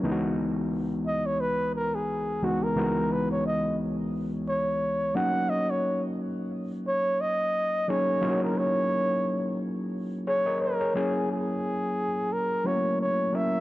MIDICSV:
0, 0, Header, 1, 3, 480
1, 0, Start_track
1, 0, Tempo, 681818
1, 23, Time_signature, 4, 2, 24, 8
1, 9577, End_track
2, 0, Start_track
2, 0, Title_t, "Flugelhorn"
2, 0, Program_c, 0, 56
2, 753, Note_on_c, 0, 75, 93
2, 889, Note_on_c, 0, 73, 95
2, 899, Note_off_c, 0, 75, 0
2, 991, Note_on_c, 0, 71, 105
2, 1002, Note_off_c, 0, 73, 0
2, 1227, Note_off_c, 0, 71, 0
2, 1234, Note_on_c, 0, 70, 88
2, 1371, Note_on_c, 0, 68, 83
2, 1382, Note_off_c, 0, 70, 0
2, 1718, Note_on_c, 0, 66, 82
2, 1728, Note_off_c, 0, 68, 0
2, 1853, Note_on_c, 0, 70, 94
2, 1864, Note_off_c, 0, 66, 0
2, 2197, Note_on_c, 0, 71, 81
2, 2208, Note_off_c, 0, 70, 0
2, 2326, Note_off_c, 0, 71, 0
2, 2334, Note_on_c, 0, 73, 84
2, 2423, Note_off_c, 0, 73, 0
2, 2438, Note_on_c, 0, 75, 88
2, 2654, Note_off_c, 0, 75, 0
2, 3151, Note_on_c, 0, 73, 88
2, 3630, Note_on_c, 0, 78, 104
2, 3641, Note_off_c, 0, 73, 0
2, 3871, Note_on_c, 0, 75, 96
2, 3882, Note_off_c, 0, 78, 0
2, 4014, Note_on_c, 0, 73, 82
2, 4025, Note_off_c, 0, 75, 0
2, 4247, Note_off_c, 0, 73, 0
2, 4838, Note_on_c, 0, 73, 108
2, 5076, Note_on_c, 0, 75, 106
2, 5086, Note_off_c, 0, 73, 0
2, 5559, Note_on_c, 0, 73, 101
2, 5570, Note_off_c, 0, 75, 0
2, 5927, Note_off_c, 0, 73, 0
2, 5937, Note_on_c, 0, 70, 84
2, 6041, Note_on_c, 0, 73, 102
2, 6051, Note_off_c, 0, 70, 0
2, 6752, Note_off_c, 0, 73, 0
2, 7241, Note_on_c, 0, 73, 93
2, 7477, Note_on_c, 0, 70, 89
2, 7487, Note_off_c, 0, 73, 0
2, 7709, Note_off_c, 0, 70, 0
2, 7718, Note_on_c, 0, 68, 83
2, 7934, Note_off_c, 0, 68, 0
2, 7965, Note_on_c, 0, 68, 88
2, 8679, Note_on_c, 0, 70, 98
2, 8690, Note_off_c, 0, 68, 0
2, 8917, Note_on_c, 0, 73, 91
2, 8927, Note_off_c, 0, 70, 0
2, 9149, Note_off_c, 0, 73, 0
2, 9158, Note_on_c, 0, 73, 94
2, 9400, Note_on_c, 0, 76, 97
2, 9410, Note_off_c, 0, 73, 0
2, 9577, Note_off_c, 0, 76, 0
2, 9577, End_track
3, 0, Start_track
3, 0, Title_t, "Reed electric piano"
3, 0, Program_c, 1, 4
3, 0, Control_c, 1, 64, 127
3, 22, Note_on_c, 1, 37, 85
3, 24, Note_on_c, 1, 52, 80
3, 27, Note_on_c, 1, 56, 74
3, 29, Note_on_c, 1, 59, 79
3, 32, Control_c, 1, 64, 0
3, 34, Note_on_c, 1, 63, 77
3, 35, Note_on_c, 1, 64, 73
3, 81, Note_off_c, 1, 64, 0
3, 82, Note_on_c, 1, 66, 95
3, 142, Control_c, 1, 64, 127
3, 799, Note_off_c, 1, 37, 0
3, 800, Note_off_c, 1, 52, 0
3, 801, Note_off_c, 1, 56, 0
3, 802, Note_off_c, 1, 59, 0
3, 804, Note_off_c, 1, 63, 0
3, 828, Note_off_c, 1, 66, 0
3, 1706, Note_on_c, 1, 37, 66
3, 1707, Note_on_c, 1, 52, 59
3, 1710, Note_on_c, 1, 56, 65
3, 1713, Note_on_c, 1, 59, 61
3, 1715, Note_on_c, 1, 63, 59
3, 1718, Note_on_c, 1, 66, 73
3, 1903, Note_off_c, 1, 37, 0
3, 1904, Note_off_c, 1, 52, 0
3, 1905, Note_off_c, 1, 56, 0
3, 1906, Note_off_c, 1, 59, 0
3, 1907, Note_off_c, 1, 63, 0
3, 1909, Note_off_c, 1, 66, 0
3, 1943, Note_on_c, 1, 37, 70
3, 1946, Note_on_c, 1, 52, 65
3, 1948, Note_on_c, 1, 56, 68
3, 1951, Note_on_c, 1, 59, 66
3, 1955, Note_on_c, 1, 63, 63
3, 1958, Note_on_c, 1, 66, 79
3, 2719, Note_off_c, 1, 37, 0
3, 2720, Note_off_c, 1, 52, 0
3, 2722, Note_off_c, 1, 56, 0
3, 2723, Note_off_c, 1, 59, 0
3, 2725, Note_off_c, 1, 63, 0
3, 2726, Note_off_c, 1, 66, 0
3, 3624, Note_on_c, 1, 54, 74
3, 3628, Note_on_c, 1, 58, 66
3, 3630, Control_c, 1, 64, 0
3, 3631, Note_on_c, 1, 61, 68
3, 3635, Note_on_c, 1, 63, 69
3, 3636, Note_on_c, 1, 66, 82
3, 3746, Control_c, 1, 64, 127
3, 4399, Note_off_c, 1, 54, 0
3, 4401, Note_off_c, 1, 58, 0
3, 4403, Note_off_c, 1, 61, 0
3, 4405, Note_off_c, 1, 63, 0
3, 4405, Note_off_c, 1, 66, 0
3, 5548, Note_on_c, 1, 54, 69
3, 5551, Note_on_c, 1, 58, 65
3, 5553, Note_on_c, 1, 61, 64
3, 5557, Note_on_c, 1, 63, 65
3, 5560, Note_on_c, 1, 68, 80
3, 5744, Note_off_c, 1, 54, 0
3, 5746, Note_off_c, 1, 58, 0
3, 5747, Note_off_c, 1, 61, 0
3, 5749, Note_off_c, 1, 63, 0
3, 5750, Note_off_c, 1, 68, 0
3, 5783, Note_on_c, 1, 54, 78
3, 5787, Note_on_c, 1, 58, 71
3, 5789, Note_on_c, 1, 61, 64
3, 5793, Note_on_c, 1, 63, 67
3, 5797, Note_on_c, 1, 64, 68
3, 5842, Note_off_c, 1, 64, 0
3, 5842, Note_on_c, 1, 66, 84
3, 6559, Note_off_c, 1, 54, 0
3, 6561, Note_off_c, 1, 58, 0
3, 6562, Note_off_c, 1, 61, 0
3, 6564, Note_off_c, 1, 63, 0
3, 6588, Note_off_c, 1, 66, 0
3, 7232, Note_on_c, 1, 73, 67
3, 7236, Note_on_c, 1, 68, 57
3, 7357, Note_off_c, 1, 73, 0
3, 7359, Note_off_c, 1, 68, 0
3, 7365, Note_on_c, 1, 75, 73
3, 7369, Note_on_c, 1, 70, 61
3, 7590, Note_off_c, 1, 75, 0
3, 7592, Note_off_c, 1, 70, 0
3, 7607, Note_on_c, 1, 73, 62
3, 7610, Note_on_c, 1, 68, 53
3, 7705, Note_on_c, 1, 54, 66
3, 7710, Note_on_c, 1, 58, 58
3, 7711, Note_off_c, 1, 68, 0
3, 7713, Control_c, 1, 64, 0
3, 7713, Note_on_c, 1, 61, 62
3, 7715, Note_on_c, 1, 64, 61
3, 7719, Note_on_c, 1, 68, 69
3, 7831, Note_off_c, 1, 73, 0
3, 7855, Control_c, 1, 64, 127
3, 8480, Note_off_c, 1, 54, 0
3, 8482, Note_off_c, 1, 58, 0
3, 8484, Note_off_c, 1, 61, 0
3, 8485, Note_off_c, 1, 64, 0
3, 8487, Note_off_c, 1, 68, 0
3, 8902, Note_on_c, 1, 54, 63
3, 8905, Note_on_c, 1, 57, 44
3, 8909, Note_on_c, 1, 61, 53
3, 8911, Note_on_c, 1, 64, 54
3, 8916, Note_on_c, 1, 66, 70
3, 8951, Note_on_c, 1, 58, 59
3, 8956, Note_off_c, 1, 57, 0
3, 9300, Note_off_c, 1, 54, 0
3, 9304, Note_off_c, 1, 61, 0
3, 9305, Note_off_c, 1, 64, 0
3, 9307, Note_off_c, 1, 66, 0
3, 9324, Note_off_c, 1, 58, 0
3, 9383, Note_on_c, 1, 54, 56
3, 9385, Note_on_c, 1, 58, 53
3, 9389, Note_on_c, 1, 61, 52
3, 9394, Note_on_c, 1, 64, 51
3, 9397, Note_on_c, 1, 70, 60
3, 9577, Note_off_c, 1, 54, 0
3, 9577, Note_off_c, 1, 58, 0
3, 9577, Note_off_c, 1, 61, 0
3, 9577, Note_off_c, 1, 64, 0
3, 9577, Note_off_c, 1, 70, 0
3, 9577, End_track
0, 0, End_of_file